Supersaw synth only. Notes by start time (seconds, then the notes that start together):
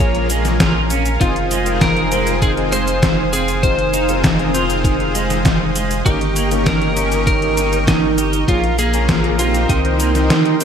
Already playing: A#4 F5 G#5 A#5
1.21 C5 D#6
6.05 A#4 D#5 G5 C#6
8.48 F5 A#5
9.69 A#4 D#5 G5 C6